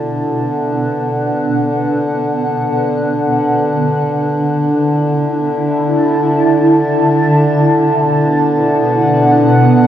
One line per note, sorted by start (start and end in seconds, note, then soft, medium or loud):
0.00 3.03 B2 medium
0.00 9.87 D3 medium
0.00 4.81 B3 medium
0.00 7.47 D4 medium
0.00 0.35 E4 medium
0.00 7.48 A4 medium
0.00 4.82 F#5 medium
0.00 0.35 A5 medium
3.01 7.46 D3 medium
4.25 9.25 E4 medium
5.05 9.26 A5 medium
7.47 9.87 B2 medium
7.68 9.87 B3 medium
8.22 9.87 F#5 medium
8.69 9.87 D4 loud
9.45 9.87 A4 medium